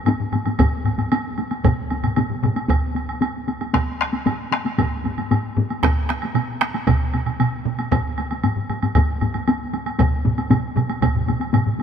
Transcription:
0.06 taiko low-mid medium
0.06 taiko high medium
0.06 high woodblock medium
0.20 taiko low-mid medium
0.32 taiko low-mid medium
0.32 taiko high medium
0.32 high woodblock soft
0.46 taiko low-mid medium
0.46 taiko high medium
0.46 high woodblock soft
0.59 taiko loud
0.59 taiko low-mid medium
0.59 taiko high medium
0.59 high woodblock medium
0.85 taiko low-mid medium
0.85 taiko high medium
0.85 high woodblock soft
0.98 taiko low-mid medium
0.98 taiko high medium
0.98 high woodblock soft
1.12 taiko high medium
1.12 high woodblock medium
1.38 taiko high medium
1.38 high woodblock soft
1.51 taiko high soft
1.51 high woodblock soft
1.64 taiko loud
1.64 taiko low-mid medium
1.64 taiko mid medium
1.64 taiko high medium
1.64 high woodblock medium
1.90 taiko high soft
1.90 high woodblock soft
2.03 taiko low-mid medium
2.03 taiko mid medium
2.03 taiko high medium
2.03 high woodblock soft
2.16 taiko low-mid medium
2.16 taiko mid medium
2.16 taiko high medium
2.16 high woodblock soft
2.30 taiko low-mid medium
2.30 taiko mid medium
2.43 taiko low-mid loud
2.43 taiko mid medium
2.43 taiko high soft
2.43 high woodblock soft
2.56 taiko high medium
2.56 high woodblock soft
2.69 taiko medium
2.69 taiko high medium
2.69 high woodblock medium
2.95 taiko high medium
2.95 high woodblock soft
3.09 high woodblock soft
3.21 taiko high medium
3.21 high woodblock medium
3.48 taiko high medium
3.48 high woodblock soft
3.61 taiko high medium
3.61 high woodblock soft
3.73 taiko rim medium
3.73 taiko medium
3.73 taiko high medium
3.73 high woodblock medium
4.01 taiko rim medium
4.01 high woodblock soft
4.13 taiko high medium
4.13 high woodblock soft
4.26 taiko low-mid loud
4.26 taiko high medium
4.26 high woodblock medium
4.52 taiko rim medium
4.52 taiko high medium
4.52 high woodblock soft
4.65 taiko high medium
4.65 high woodblock soft
4.78 taiko medium
4.78 taiko low-mid medium
4.78 taiko high medium
4.78 high woodblock medium
5.04 taiko low-mid medium
5.04 taiko high medium
5.04 high woodblock soft
5.18 taiko low-mid medium
5.18 taiko high soft
5.18 high woodblock soft
5.31 taiko low-mid medium
5.31 taiko high medium
5.31 high woodblock medium
5.57 taiko low-mid loud
5.57 taiko high medium
5.70 taiko high soft
5.70 high woodblock soft
5.83 taiko rim medium
5.83 taiko loud
5.83 taiko high medium
5.83 high woodblock medium
6.09 taiko rim medium
6.09 taiko high soft
6.09 high woodblock soft
6.22 taiko high soft
6.22 high woodblock soft
6.35 taiko mid medium
6.35 taiko high medium
6.35 high woodblock medium
6.61 taiko rim medium
6.61 taiko high soft
6.61 high woodblock soft
6.74 taiko high medium
6.74 high woodblock soft
6.87 taiko loud
6.87 taiko mid medium
6.87 taiko high medium
6.87 high woodblock medium
7.14 taiko mid medium
7.14 taiko high soft
7.14 high woodblock soft
7.26 taiko mid medium
7.26 taiko high soft
7.26 high woodblock soft
7.40 taiko mid loud
7.40 taiko high medium
7.40 high woodblock medium
7.65 taiko mid loud
7.65 taiko high soft
7.79 taiko high soft
7.79 high woodblock soft
7.91 taiko loud
7.91 taiko low-mid medium
7.91 taiko high medium
7.91 high woodblock medium
8.18 taiko high soft
8.18 high woodblock soft
8.31 taiko high soft
8.31 high woodblock soft
8.43 taiko low-mid medium
8.43 taiko high medium
8.43 high woodblock soft
8.56 taiko low-mid medium
8.69 taiko low-mid medium
8.69 taiko high medium
8.69 high woodblock soft
8.83 taiko low-mid medium
8.83 taiko high medium
8.83 high woodblock soft
8.95 taiko loud
8.95 taiko low-mid medium
8.95 taiko high medium
8.95 high woodblock medium
9.21 taiko low-mid medium
9.21 taiko high medium
9.21 high woodblock soft
9.34 taiko low-mid medium
9.34 taiko high soft
9.34 high woodblock soft
9.48 taiko high medium
9.48 high woodblock medium
9.73 taiko high medium
9.73 high woodblock soft
9.86 taiko high medium
9.86 high woodblock soft
9.99 taiko loud
9.99 taiko low-mid medium
9.99 taiko mid medium
9.99 taiko high medium
9.99 high woodblock medium
10.25 taiko low-mid medium
10.25 taiko mid medium
10.25 taiko high medium
10.38 taiko high medium
10.38 high woodblock soft
10.50 taiko low-mid loud
10.50 taiko mid medium
10.50 taiko high medium
10.50 high woodblock soft
10.76 taiko low-mid medium
10.76 taiko mid medium
10.76 taiko high medium
10.76 high woodblock soft
10.89 taiko high medium
10.89 high woodblock soft
11.02 taiko medium
11.02 taiko low-mid medium
11.02 taiko mid medium
11.02 taiko high medium
11.02 high woodblock medium
11.15 taiko low-mid medium
11.15 taiko mid medium
11.27 taiko low-mid medium
11.27 taiko mid medium
11.27 taiko high medium
11.27 high woodblock soft
11.40 taiko high medium
11.40 high woodblock soft
11.53 taiko low-mid medium
11.53 taiko mid medium
11.53 taiko high medium
11.53 high woodblock medium
11.66 taiko low-mid medium
11.66 taiko mid medium
11.79 taiko high medium

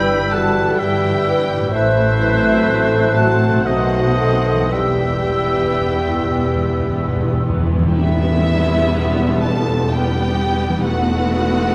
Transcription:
0.00 0.69 G1 medium
0.00 0.69 G2 medium
0.00 1.69 G2 medium
0.00 0.31 E3 soft
0.00 0.76 G3 medium
0.00 1.71 B3 soft
0.00 0.18 E4 medium
0.00 0.31 E4 medium
0.00 2.75 E4 soft
0.00 0.31 B4 medium
0.00 0.75 B4 medium
0.00 1.76 B4 soft
0.00 0.35 G5 medium
0.00 0.32 B5 medium
0.00 0.51 E6 medium
0.32 1.25 E3 medium
0.32 1.25 E4 medium
0.32 0.78 F#4 medium
0.32 0.80 A4 medium
0.32 0.81 F#5 medium
0.32 0.79 A5 medium
0.78 1.63 G1 medium
0.78 1.63 G2 medium
0.78 1.73 G3 medium
0.78 1.27 G4 medium
0.78 1.75 G4 medium
0.78 1.72 B4 medium
0.78 1.47 E5 medium
0.78 1.72 G5 medium
0.78 1.72 E6 medium
1.27 1.74 E3 soft
1.27 1.74 E4 soft
1.27 1.74 B4 medium
1.56 3.62 A2 medium
1.61 3.51 A3 soft
1.65 4.72 F#4 soft
1.70 3.60 C5 soft
1.70 2.19 C5 medium
1.70 3.13 C5 medium
1.70 3.62 C5 medium
1.70 3.62 F#6 medium
1.74 2.58 A1 medium
1.74 2.58 A2 medium
1.74 3.63 A3 medium
1.74 3.15 E4 medium
1.74 3.14 E5 medium
2.20 3.15 F#3 medium
2.20 3.15 C4 medium
2.20 2.68 B4 medium
2.66 3.55 A1 medium
2.66 3.55 A2 medium
2.66 3.15 A4 medium
3.14 3.66 F#3 soft
3.14 3.66 C4 soft
3.14 3.63 F#4 medium
3.14 3.68 F#5 medium
3.14 3.66 A5 medium
3.20 3.67 A4 medium
3.48 4.67 B2 soft
3.53 4.69 A3 soft
3.57 4.71 D#4 soft
3.61 4.73 A3 medium
3.61 4.16 F#4 medium
3.61 4.73 C5 soft
3.61 4.71 C5 medium
3.61 4.68 F#5 medium
3.66 4.58 B1 medium
3.66 4.58 B2 medium
3.66 4.16 D#3 medium
3.66 4.16 C4 soft
3.66 4.72 F#4 medium
3.66 4.73 D#5 medium
3.66 4.71 D#6 medium
4.16 4.70 D#3 soft
4.16 4.70 C4 soft
4.16 4.71 A4 medium
4.53 7.78 E3 medium
4.57 7.82 G3 soft
4.62 7.87 E4 soft
4.66 5.67 E2 medium
4.66 7.91 B4 soft
4.66 7.61 B4 medium
4.70 5.67 E1 medium
4.70 4.78 E2 soft
4.70 7.62 G3 medium
4.70 7.44 G4 medium
4.70 7.41 G4 medium
4.70 7.44 E5 medium
4.70 7.43 G5 medium
4.70 7.58 E6 medium
4.79 4.87 E2 soft
4.88 4.95 E2 soft
4.96 5.04 E2 soft
5.05 5.14 E2 soft
5.15 5.21 E2 soft
5.23 5.29 E2 soft
5.23 6.32 E3 medium
5.23 6.32 B3 soft
5.30 5.38 E2 soft
5.39 5.45 E2 soft
5.46 5.54 E2 soft
5.55 5.62 E2 soft
5.63 5.70 E2 soft
5.71 5.79 E2 soft
5.80 6.76 E1 medium
5.80 6.75 E2 medium
5.80 5.86 E2 soft
5.88 5.96 E2 soft
5.97 6.04 E2 soft
6.05 6.12 E2 soft
6.22 6.28 E2 soft
6.30 6.37 E2 soft
6.30 7.41 B3 soft
6.34 7.41 E3 soft
6.38 6.45 E2 medium
6.46 6.54 E2 medium
6.55 6.63 E2 medium
6.64 6.70 E2 medium
6.72 6.78 E2 medium
6.79 6.88 E2 medium
6.87 7.84 E1 medium
6.87 7.84 E2 medium
6.87 6.97 E2 medium
6.98 7.06 E2 medium
7.08 7.15 E2 medium
7.16 7.23 E2 medium
7.24 7.32 E2 medium
7.33 7.41 E2 medium
7.42 7.48 E2 medium
7.42 7.96 E3 soft
7.42 7.96 B3 soft
7.49 7.58 E2 medium
7.59 7.67 E2 medium
7.68 7.74 E2 medium
7.76 7.82 E2 medium
7.76 10.67 E3 medium
7.83 7.91 E2 medium
7.83 10.82 G3 medium
7.88 10.85 E4 medium
7.92 10.81 E1 medium
7.92 10.81 E2 medium
7.92 10.80 B4 soft
7.92 9.40 E5 loud
7.97 9.88 G3 medium
7.97 9.88 B3 medium
7.97 9.40 E4 medium
7.97 tam-tam medium
9.44 9.92 A4 medium
9.44 9.91 A5 medium
9.91 10.83 G3 medium
9.91 10.83 B3 medium
9.91 10.86 G4 medium
9.91 10.86 G5 medium
10.68 11.75 E3 medium
10.73 11.75 A3 medium
10.77 11.75 D#4 soft
10.81 11.75 E2 medium
10.81 11.75 A3 medium
10.81 11.75 B3 medium
10.81 11.75 B4 soft
10.81 11.75 F#5 loud
10.86 11.75 E1 medium
10.86 11.75 F#4 medium

